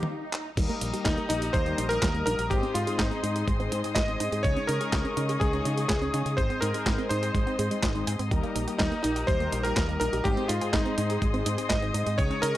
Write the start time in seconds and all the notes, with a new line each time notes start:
Already playing: swell
0.03 mid tom
0.33 clap
0.57 D#2 G3 A#3 D#4 G4 A#4 D#5 A#5 D#6, kick, closed hi-hat, crash
0.69 A#3, closed hi-hat
0.81 A#1 D#4, closed hi-hat
0.93 G3 A#3 D#4 G4 A#4, closed hi-hat
1.05 D#2 G3 D#4, kick, snare, clap, closed hi-hat
1.18 A#3, closed hi-hat
1.29 A#1 G3 A#3 D#4 A#4, closed hi-hat
1.42 G4, closed hi-hat
1.53 D#2 G3 C5, kick, closed hi-hat
1.66 G3 A#3 D#4 A#4, closed hi-hat
1.78 A#1 D#4, closed hi-hat
1.89 G3 A#3 D#4 G4 A#4, closed hi-hat
2.02 D#2 G3, kick, snare, clap, closed hi-hat
2.15 G3 A#3 D#4 A#4, closed hi-hat
2.26 A#1 D#4 A#4, closed hi-hat
2.39 A#1 G4, closed hi-hat
2.50 G#1 G#2 G#3 C4 D#4 G4 G#4 C5 D#5 C6, kick, closed hi-hat
2.63 C4, closed hi-hat
2.74 G#2 D#4 F4, closed hi-hat
2.87 G#2 G#3 C4 D#4 G#4 C5, closed hi-hat
2.98 G#1 G#3 D#4, kick, snare, clap, closed hi-hat
3.11 C4, closed hi-hat
3.23 G#2 G#3 C4 D#4 C5, closed hi-hat
3.36 G#4, closed hi-hat
3.48 G#1 G#3, kick, closed hi-hat
3.60 G#2 G#3 C4 D#4 C5, closed hi-hat
3.72 G#2 D#4, closed hi-hat
3.84 G#2 G#3 C4 D#4 G#4 C5, closed hi-hat
3.95 G#1 G#3 D#5, kick, snare, clap, closed hi-hat
4.08 G#2 G#3 C4 D#4 C5, closed hi-hat
4.20 G#2 D#4, closed hi-hat
4.32 G#2 G#4, closed hi-hat
4.43 C#2 C#3 G#3 C#4 D#4 C#5 D#5 C#6, kick, closed hi-hat
4.56 C#4, closed hi-hat
4.67 C#3 D#4 A#4, closed hi-hat
4.81 C#3 G#3 C#4 D#4 G#4 C#5, closed hi-hat
4.93 C#2 G#3, kick, snare, clap, closed hi-hat
5.05 C#4, closed hi-hat
5.17 C#3 G#3 C#4 D#4 C#5, closed hi-hat
5.29 G#4, closed hi-hat
5.40 C#2 G#3 G#4, kick, closed hi-hat
5.53 C#3 G#3 C#4 D#4 C#5, closed hi-hat
5.65 C#3 D#4, closed hi-hat
5.77 C#3 G#3 C#4 D#4 G#4 C#5, closed hi-hat
5.88 C#2 G#3 G#4, kick, snare, clap, closed hi-hat
6.02 C#3 G#3 C#4 D#4 C#5, closed hi-hat
6.14 C#3 D#4, closed hi-hat
6.26 C#3 G#4, closed hi-hat
6.37 G#1 G#2 G#3 C4 D#4 C5 D#5 C6, kick, closed hi-hat
6.50 C4, closed hi-hat
6.61 G#2 D#4 A#4, closed hi-hat
6.74 G#2 G#3 C4 D#4 G#4 C5, closed hi-hat
6.86 G#1 G#3, kick, snare, clap, closed hi-hat
6.98 C4, closed hi-hat
7.09 G#2 G#3 C4 D#4 C5, closed hi-hat
7.22 G#4, closed hi-hat
7.34 G#1 G#3, kick, closed hi-hat
7.47 G#2 G#3 C4 D#4 C5, closed hi-hat
7.59 G#2 G#3 C4 D#4 G#4 C5, closed hi-hat
7.71 G#2 G#3 C4 D#4 D#5, closed hi-hat
7.83 G#1 D#4, kick, snare, clap, closed hi-hat
7.95 G#2 G#3 C4 D#4 C5, closed hi-hat
8.07 G#2 G#5, closed hi-hat
8.19 G#2 C4, closed hi-hat
8.31 D#2 G3 A#3 D#4 G4 A#4 A#5, kick, closed hi-hat
8.43 A#3, closed hi-hat
8.55 A#1 D#4, closed hi-hat
8.68 G3 A#3 D#4 G4 A#4, closed hi-hat
8.78 D#2 G3 D#4, kick, snare, clap, closed hi-hat
8.92 A#3, closed hi-hat
9.03 A#1 G3 A#3 D#4 A#4, closed hi-hat
9.16 G4, closed hi-hat
9.27 D#2 G3 C5, kick, closed hi-hat
9.40 G3 A#3 D#4 A#4, closed hi-hat
9.52 A#1 D#4, closed hi-hat
9.63 G3 A#3 D#4 G4 A#4, closed hi-hat
9.76 D#2 G3, kick, snare, clap, closed hi-hat
9.89 G3 A#3 D#4 A#4, closed hi-hat
10.00 A#1 D#4 A#4, closed hi-hat
10.13 A#1 G4, closed hi-hat
10.24 G#1 G#2 G#3 C4 D#4 G4 G#4 C5 C6 D#6, kick, closed hi-hat
10.37 C4, closed hi-hat
10.48 G#2 D#4 F4, closed hi-hat
10.61 G#2 G#3 C4 D#4 G#4 C5, closed hi-hat
10.73 G#1 G#3 D#4, kick, snare, clap, closed hi-hat
10.86 C4, closed hi-hat
10.98 G#2 G#3 C4 D#4 C5, closed hi-hat
11.10 G#4, closed hi-hat
11.22 G#1 G#3, kick, closed hi-hat
11.34 G#2 G#3 C4 D#4 C5, closed hi-hat
11.46 G#2 D#4, closed hi-hat
11.58 G#2 G#3 C4 D#4 G#4 C5, closed hi-hat
11.69 G#1 G#3 D#5, kick, snare, clap, closed hi-hat
11.82 G#2 G#3 C4 D#4 C5, closed hi-hat
11.94 G#2 D#4, closed hi-hat
12.06 G#2 G#4, closed hi-hat
12.18 C#2 C#3 G#3 C#4 D#4 G#4 C#5 C#6, kick, closed hi-hat
12.30 C#4, closed hi-hat
12.42 C#3 D#4 A#4, closed hi-hat